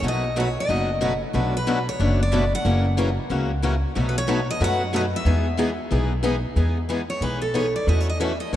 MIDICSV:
0, 0, Header, 1, 5, 480
1, 0, Start_track
1, 0, Key_signature, 4, "major"
1, 0, Tempo, 326975
1, 44, Time_signature, 4, 2, 24, 8
1, 12568, End_track
2, 0, Start_track
2, 0, Title_t, "Steel-string acoustic guitar"
2, 0, Program_c, 0, 25
2, 121, Note_on_c, 0, 75, 90
2, 576, Note_off_c, 0, 75, 0
2, 585, Note_on_c, 0, 73, 83
2, 851, Note_off_c, 0, 73, 0
2, 885, Note_on_c, 0, 75, 72
2, 1750, Note_off_c, 0, 75, 0
2, 2301, Note_on_c, 0, 71, 77
2, 2725, Note_off_c, 0, 71, 0
2, 2772, Note_on_c, 0, 73, 88
2, 3245, Note_off_c, 0, 73, 0
2, 3269, Note_on_c, 0, 74, 90
2, 3733, Note_off_c, 0, 74, 0
2, 3741, Note_on_c, 0, 78, 92
2, 5577, Note_off_c, 0, 78, 0
2, 6002, Note_on_c, 0, 71, 64
2, 6108, Note_off_c, 0, 71, 0
2, 6134, Note_on_c, 0, 73, 98
2, 6560, Note_off_c, 0, 73, 0
2, 6614, Note_on_c, 0, 75, 90
2, 6788, Note_off_c, 0, 75, 0
2, 6812, Note_on_c, 0, 78, 102
2, 7274, Note_off_c, 0, 78, 0
2, 7280, Note_on_c, 0, 75, 90
2, 7354, Note_off_c, 0, 75, 0
2, 7577, Note_on_c, 0, 76, 89
2, 9125, Note_off_c, 0, 76, 0
2, 10419, Note_on_c, 0, 73, 81
2, 10600, Note_off_c, 0, 73, 0
2, 10601, Note_on_c, 0, 71, 75
2, 10881, Note_off_c, 0, 71, 0
2, 10887, Note_on_c, 0, 69, 68
2, 11074, Note_off_c, 0, 69, 0
2, 11087, Note_on_c, 0, 73, 66
2, 11365, Note_off_c, 0, 73, 0
2, 11387, Note_on_c, 0, 74, 77
2, 11564, Note_off_c, 0, 74, 0
2, 11582, Note_on_c, 0, 75, 85
2, 11750, Note_off_c, 0, 75, 0
2, 11750, Note_on_c, 0, 73, 76
2, 11878, Note_off_c, 0, 73, 0
2, 11884, Note_on_c, 0, 75, 79
2, 12038, Note_off_c, 0, 75, 0
2, 12047, Note_on_c, 0, 76, 82
2, 12325, Note_off_c, 0, 76, 0
2, 12334, Note_on_c, 0, 75, 77
2, 12518, Note_off_c, 0, 75, 0
2, 12568, End_track
3, 0, Start_track
3, 0, Title_t, "Steel-string acoustic guitar"
3, 0, Program_c, 1, 25
3, 53, Note_on_c, 1, 47, 72
3, 62, Note_on_c, 1, 54, 63
3, 65, Note_on_c, 1, 57, 71
3, 65, Note_on_c, 1, 63, 68
3, 72, Note_on_c, 1, 71, 75
3, 73, Note_on_c, 1, 66, 72
3, 345, Note_off_c, 1, 47, 0
3, 349, Note_off_c, 1, 54, 0
3, 350, Note_off_c, 1, 57, 0
3, 351, Note_off_c, 1, 63, 0
3, 354, Note_off_c, 1, 66, 0
3, 354, Note_off_c, 1, 71, 0
3, 533, Note_on_c, 1, 47, 87
3, 534, Note_on_c, 1, 57, 93
3, 539, Note_on_c, 1, 54, 88
3, 543, Note_on_c, 1, 63, 92
3, 546, Note_on_c, 1, 71, 93
3, 548, Note_on_c, 1, 66, 103
3, 687, Note_off_c, 1, 47, 0
3, 688, Note_off_c, 1, 57, 0
3, 690, Note_off_c, 1, 54, 0
3, 692, Note_off_c, 1, 63, 0
3, 694, Note_off_c, 1, 71, 0
3, 695, Note_off_c, 1, 66, 0
3, 1012, Note_on_c, 1, 47, 56
3, 1019, Note_on_c, 1, 54, 57
3, 1026, Note_on_c, 1, 57, 61
3, 1026, Note_on_c, 1, 63, 68
3, 1032, Note_on_c, 1, 66, 64
3, 1035, Note_on_c, 1, 71, 65
3, 1304, Note_off_c, 1, 47, 0
3, 1307, Note_off_c, 1, 54, 0
3, 1311, Note_off_c, 1, 57, 0
3, 1311, Note_off_c, 1, 63, 0
3, 1314, Note_off_c, 1, 66, 0
3, 1315, Note_off_c, 1, 71, 0
3, 1491, Note_on_c, 1, 47, 80
3, 1495, Note_on_c, 1, 54, 89
3, 1497, Note_on_c, 1, 57, 81
3, 1503, Note_on_c, 1, 66, 97
3, 1506, Note_on_c, 1, 63, 81
3, 1507, Note_on_c, 1, 71, 95
3, 1646, Note_off_c, 1, 47, 0
3, 1648, Note_off_c, 1, 54, 0
3, 1649, Note_off_c, 1, 57, 0
3, 1652, Note_off_c, 1, 66, 0
3, 1653, Note_off_c, 1, 63, 0
3, 1654, Note_off_c, 1, 71, 0
3, 1957, Note_on_c, 1, 47, 65
3, 1965, Note_on_c, 1, 57, 64
3, 1969, Note_on_c, 1, 54, 75
3, 1972, Note_on_c, 1, 62, 69
3, 1976, Note_on_c, 1, 66, 71
3, 1976, Note_on_c, 1, 71, 72
3, 2256, Note_off_c, 1, 47, 0
3, 2260, Note_off_c, 1, 57, 0
3, 2262, Note_off_c, 1, 54, 0
3, 2264, Note_off_c, 1, 62, 0
3, 2266, Note_off_c, 1, 66, 0
3, 2266, Note_off_c, 1, 71, 0
3, 2449, Note_on_c, 1, 47, 90
3, 2453, Note_on_c, 1, 57, 87
3, 2455, Note_on_c, 1, 54, 80
3, 2461, Note_on_c, 1, 62, 84
3, 2464, Note_on_c, 1, 66, 102
3, 2471, Note_on_c, 1, 71, 97
3, 2604, Note_off_c, 1, 47, 0
3, 2606, Note_off_c, 1, 57, 0
3, 2607, Note_off_c, 1, 54, 0
3, 2611, Note_off_c, 1, 62, 0
3, 2612, Note_off_c, 1, 66, 0
3, 2615, Note_off_c, 1, 71, 0
3, 2923, Note_on_c, 1, 47, 52
3, 2931, Note_on_c, 1, 54, 54
3, 2931, Note_on_c, 1, 57, 60
3, 2933, Note_on_c, 1, 62, 66
3, 2937, Note_on_c, 1, 71, 68
3, 2942, Note_on_c, 1, 66, 69
3, 3219, Note_off_c, 1, 47, 0
3, 3223, Note_off_c, 1, 54, 0
3, 3223, Note_off_c, 1, 57, 0
3, 3224, Note_off_c, 1, 62, 0
3, 3226, Note_off_c, 1, 71, 0
3, 3228, Note_off_c, 1, 66, 0
3, 3400, Note_on_c, 1, 47, 81
3, 3402, Note_on_c, 1, 54, 83
3, 3407, Note_on_c, 1, 62, 99
3, 3409, Note_on_c, 1, 57, 85
3, 3415, Note_on_c, 1, 71, 92
3, 3418, Note_on_c, 1, 66, 84
3, 3560, Note_off_c, 1, 47, 0
3, 3561, Note_off_c, 1, 54, 0
3, 3563, Note_off_c, 1, 62, 0
3, 3565, Note_off_c, 1, 57, 0
3, 3567, Note_off_c, 1, 71, 0
3, 3569, Note_off_c, 1, 66, 0
3, 3890, Note_on_c, 1, 54, 68
3, 3897, Note_on_c, 1, 61, 65
3, 3899, Note_on_c, 1, 64, 68
3, 3908, Note_on_c, 1, 70, 82
3, 4182, Note_off_c, 1, 54, 0
3, 4185, Note_off_c, 1, 61, 0
3, 4187, Note_off_c, 1, 64, 0
3, 4191, Note_off_c, 1, 70, 0
3, 4373, Note_on_c, 1, 54, 91
3, 4378, Note_on_c, 1, 61, 89
3, 4381, Note_on_c, 1, 64, 96
3, 4389, Note_on_c, 1, 70, 107
3, 4526, Note_off_c, 1, 54, 0
3, 4529, Note_off_c, 1, 61, 0
3, 4530, Note_off_c, 1, 64, 0
3, 4534, Note_off_c, 1, 70, 0
3, 4838, Note_on_c, 1, 54, 61
3, 4846, Note_on_c, 1, 61, 65
3, 4851, Note_on_c, 1, 64, 72
3, 4859, Note_on_c, 1, 70, 60
3, 5136, Note_off_c, 1, 54, 0
3, 5140, Note_off_c, 1, 61, 0
3, 5143, Note_off_c, 1, 64, 0
3, 5146, Note_off_c, 1, 70, 0
3, 5321, Note_on_c, 1, 54, 81
3, 5331, Note_on_c, 1, 61, 84
3, 5333, Note_on_c, 1, 64, 92
3, 5340, Note_on_c, 1, 70, 87
3, 5480, Note_off_c, 1, 54, 0
3, 5485, Note_off_c, 1, 61, 0
3, 5486, Note_off_c, 1, 64, 0
3, 5489, Note_off_c, 1, 70, 0
3, 5802, Note_on_c, 1, 47, 66
3, 5804, Note_on_c, 1, 54, 75
3, 5808, Note_on_c, 1, 57, 72
3, 5809, Note_on_c, 1, 63, 77
3, 5817, Note_on_c, 1, 66, 78
3, 5818, Note_on_c, 1, 71, 75
3, 6098, Note_off_c, 1, 47, 0
3, 6099, Note_off_c, 1, 54, 0
3, 6101, Note_off_c, 1, 57, 0
3, 6101, Note_off_c, 1, 63, 0
3, 6105, Note_off_c, 1, 66, 0
3, 6106, Note_off_c, 1, 71, 0
3, 6271, Note_on_c, 1, 47, 90
3, 6279, Note_on_c, 1, 54, 100
3, 6280, Note_on_c, 1, 57, 93
3, 6281, Note_on_c, 1, 63, 93
3, 6292, Note_on_c, 1, 66, 98
3, 6292, Note_on_c, 1, 71, 96
3, 6435, Note_off_c, 1, 47, 0
3, 6439, Note_off_c, 1, 54, 0
3, 6439, Note_off_c, 1, 57, 0
3, 6440, Note_off_c, 1, 63, 0
3, 6445, Note_off_c, 1, 66, 0
3, 6446, Note_off_c, 1, 71, 0
3, 6763, Note_on_c, 1, 57, 67
3, 6764, Note_on_c, 1, 47, 68
3, 6770, Note_on_c, 1, 54, 65
3, 6772, Note_on_c, 1, 63, 65
3, 6777, Note_on_c, 1, 66, 68
3, 6780, Note_on_c, 1, 71, 74
3, 7058, Note_off_c, 1, 47, 0
3, 7058, Note_off_c, 1, 57, 0
3, 7062, Note_off_c, 1, 54, 0
3, 7062, Note_off_c, 1, 63, 0
3, 7065, Note_off_c, 1, 66, 0
3, 7067, Note_off_c, 1, 71, 0
3, 7234, Note_on_c, 1, 47, 81
3, 7235, Note_on_c, 1, 54, 86
3, 7239, Note_on_c, 1, 57, 93
3, 7241, Note_on_c, 1, 66, 95
3, 7249, Note_on_c, 1, 63, 95
3, 7251, Note_on_c, 1, 71, 86
3, 7396, Note_off_c, 1, 47, 0
3, 7396, Note_off_c, 1, 54, 0
3, 7399, Note_off_c, 1, 57, 0
3, 7400, Note_off_c, 1, 66, 0
3, 7404, Note_off_c, 1, 63, 0
3, 7404, Note_off_c, 1, 71, 0
3, 7721, Note_on_c, 1, 52, 71
3, 7722, Note_on_c, 1, 59, 72
3, 7726, Note_on_c, 1, 56, 80
3, 7731, Note_on_c, 1, 68, 76
3, 7732, Note_on_c, 1, 63, 69
3, 8017, Note_off_c, 1, 52, 0
3, 8017, Note_off_c, 1, 59, 0
3, 8019, Note_off_c, 1, 56, 0
3, 8022, Note_off_c, 1, 63, 0
3, 8022, Note_off_c, 1, 68, 0
3, 8191, Note_on_c, 1, 52, 99
3, 8201, Note_on_c, 1, 56, 91
3, 8202, Note_on_c, 1, 59, 90
3, 8208, Note_on_c, 1, 63, 103
3, 8212, Note_on_c, 1, 68, 94
3, 8354, Note_off_c, 1, 52, 0
3, 8359, Note_off_c, 1, 56, 0
3, 8360, Note_off_c, 1, 59, 0
3, 8363, Note_off_c, 1, 63, 0
3, 8365, Note_off_c, 1, 68, 0
3, 8681, Note_on_c, 1, 52, 72
3, 8683, Note_on_c, 1, 56, 69
3, 8686, Note_on_c, 1, 59, 68
3, 8693, Note_on_c, 1, 68, 72
3, 8695, Note_on_c, 1, 63, 71
3, 8977, Note_off_c, 1, 52, 0
3, 8978, Note_off_c, 1, 56, 0
3, 8979, Note_off_c, 1, 59, 0
3, 8983, Note_off_c, 1, 68, 0
3, 8984, Note_off_c, 1, 63, 0
3, 9143, Note_on_c, 1, 52, 77
3, 9151, Note_on_c, 1, 56, 95
3, 9157, Note_on_c, 1, 59, 98
3, 9159, Note_on_c, 1, 63, 101
3, 9162, Note_on_c, 1, 68, 91
3, 9310, Note_off_c, 1, 52, 0
3, 9314, Note_off_c, 1, 56, 0
3, 9317, Note_off_c, 1, 59, 0
3, 9318, Note_off_c, 1, 63, 0
3, 9320, Note_off_c, 1, 68, 0
3, 9632, Note_on_c, 1, 52, 61
3, 9641, Note_on_c, 1, 59, 66
3, 9642, Note_on_c, 1, 63, 67
3, 9643, Note_on_c, 1, 56, 64
3, 9652, Note_on_c, 1, 68, 67
3, 9933, Note_off_c, 1, 52, 0
3, 9937, Note_off_c, 1, 59, 0
3, 9937, Note_off_c, 1, 63, 0
3, 9938, Note_off_c, 1, 56, 0
3, 9943, Note_off_c, 1, 68, 0
3, 10111, Note_on_c, 1, 52, 85
3, 10122, Note_on_c, 1, 56, 83
3, 10125, Note_on_c, 1, 59, 89
3, 10129, Note_on_c, 1, 63, 86
3, 10134, Note_on_c, 1, 68, 91
3, 10275, Note_off_c, 1, 52, 0
3, 10280, Note_off_c, 1, 56, 0
3, 10281, Note_off_c, 1, 59, 0
3, 10284, Note_off_c, 1, 63, 0
3, 10286, Note_off_c, 1, 68, 0
3, 10596, Note_on_c, 1, 52, 61
3, 10600, Note_on_c, 1, 59, 62
3, 10606, Note_on_c, 1, 56, 64
3, 10607, Note_on_c, 1, 63, 63
3, 10615, Note_on_c, 1, 68, 68
3, 10895, Note_off_c, 1, 52, 0
3, 10897, Note_off_c, 1, 59, 0
3, 10900, Note_off_c, 1, 56, 0
3, 10900, Note_off_c, 1, 63, 0
3, 10904, Note_off_c, 1, 68, 0
3, 11071, Note_on_c, 1, 52, 85
3, 11075, Note_on_c, 1, 56, 81
3, 11083, Note_on_c, 1, 63, 74
3, 11085, Note_on_c, 1, 68, 100
3, 11086, Note_on_c, 1, 59, 84
3, 11235, Note_off_c, 1, 52, 0
3, 11237, Note_off_c, 1, 56, 0
3, 11241, Note_off_c, 1, 63, 0
3, 11242, Note_off_c, 1, 59, 0
3, 11242, Note_off_c, 1, 68, 0
3, 11561, Note_on_c, 1, 52, 63
3, 11572, Note_on_c, 1, 57, 70
3, 11575, Note_on_c, 1, 64, 70
3, 11576, Note_on_c, 1, 66, 62
3, 11578, Note_on_c, 1, 73, 72
3, 11858, Note_off_c, 1, 52, 0
3, 11863, Note_off_c, 1, 57, 0
3, 11865, Note_off_c, 1, 64, 0
3, 11865, Note_off_c, 1, 66, 0
3, 11866, Note_off_c, 1, 73, 0
3, 12044, Note_on_c, 1, 52, 81
3, 12048, Note_on_c, 1, 57, 84
3, 12052, Note_on_c, 1, 66, 85
3, 12056, Note_on_c, 1, 64, 97
3, 12062, Note_on_c, 1, 73, 93
3, 12202, Note_off_c, 1, 52, 0
3, 12204, Note_off_c, 1, 57, 0
3, 12206, Note_off_c, 1, 66, 0
3, 12208, Note_off_c, 1, 64, 0
3, 12211, Note_off_c, 1, 73, 0
3, 12568, End_track
4, 0, Start_track
4, 0, Title_t, "Steel-string acoustic guitar"
4, 0, Program_c, 2, 25
4, 3887, Note_on_c, 2, 49, 58
4, 3888, Note_on_c, 2, 52, 68
4, 3896, Note_on_c, 2, 58, 65
4, 3908, Note_on_c, 2, 66, 68
4, 4181, Note_off_c, 2, 49, 0
4, 4181, Note_off_c, 2, 52, 0
4, 4185, Note_off_c, 2, 58, 0
4, 4191, Note_off_c, 2, 66, 0
4, 4363, Note_on_c, 2, 49, 92
4, 4371, Note_on_c, 2, 52, 103
4, 4373, Note_on_c, 2, 58, 90
4, 4379, Note_on_c, 2, 66, 101
4, 4521, Note_off_c, 2, 49, 0
4, 4525, Note_off_c, 2, 52, 0
4, 4526, Note_off_c, 2, 58, 0
4, 4529, Note_off_c, 2, 66, 0
4, 4846, Note_on_c, 2, 49, 72
4, 4857, Note_on_c, 2, 52, 73
4, 4858, Note_on_c, 2, 58, 74
4, 4870, Note_on_c, 2, 66, 66
4, 5140, Note_off_c, 2, 49, 0
4, 5145, Note_off_c, 2, 52, 0
4, 5146, Note_off_c, 2, 58, 0
4, 5152, Note_off_c, 2, 66, 0
4, 5331, Note_on_c, 2, 49, 83
4, 5335, Note_on_c, 2, 52, 95
4, 5343, Note_on_c, 2, 58, 94
4, 5344, Note_on_c, 2, 66, 93
4, 5485, Note_off_c, 2, 49, 0
4, 5487, Note_off_c, 2, 52, 0
4, 5491, Note_off_c, 2, 58, 0
4, 5492, Note_off_c, 2, 66, 0
4, 11578, Note_on_c, 2, 61, 62
4, 11866, Note_off_c, 2, 61, 0
4, 12051, Note_on_c, 2, 61, 85
4, 12205, Note_off_c, 2, 61, 0
4, 12516, Note_on_c, 2, 52, 62
4, 12519, Note_on_c, 2, 57, 77
4, 12568, Note_off_c, 2, 52, 0
4, 12568, Note_off_c, 2, 57, 0
4, 12568, End_track
5, 0, Start_track
5, 0, Title_t, "Upright bass"
5, 0, Program_c, 3, 32
5, 35, Note_on_c, 3, 35, 77
5, 806, Note_off_c, 3, 35, 0
5, 1009, Note_on_c, 3, 30, 72
5, 1774, Note_off_c, 3, 30, 0
5, 1966, Note_on_c, 3, 35, 88
5, 2732, Note_off_c, 3, 35, 0
5, 2929, Note_on_c, 3, 30, 76
5, 3694, Note_off_c, 3, 30, 0
5, 3888, Note_on_c, 3, 30, 84
5, 4653, Note_off_c, 3, 30, 0
5, 4845, Note_on_c, 3, 37, 78
5, 5611, Note_off_c, 3, 37, 0
5, 5811, Note_on_c, 3, 35, 77
5, 6575, Note_off_c, 3, 35, 0
5, 6758, Note_on_c, 3, 42, 73
5, 7527, Note_off_c, 3, 42, 0
5, 7709, Note_on_c, 3, 40, 88
5, 8481, Note_off_c, 3, 40, 0
5, 8680, Note_on_c, 3, 35, 77
5, 9448, Note_off_c, 3, 35, 0
5, 9627, Note_on_c, 3, 40, 76
5, 10401, Note_off_c, 3, 40, 0
5, 10582, Note_on_c, 3, 35, 69
5, 11358, Note_off_c, 3, 35, 0
5, 11554, Note_on_c, 3, 40, 88
5, 12326, Note_off_c, 3, 40, 0
5, 12520, Note_on_c, 3, 45, 78
5, 12568, Note_off_c, 3, 45, 0
5, 12568, End_track
0, 0, End_of_file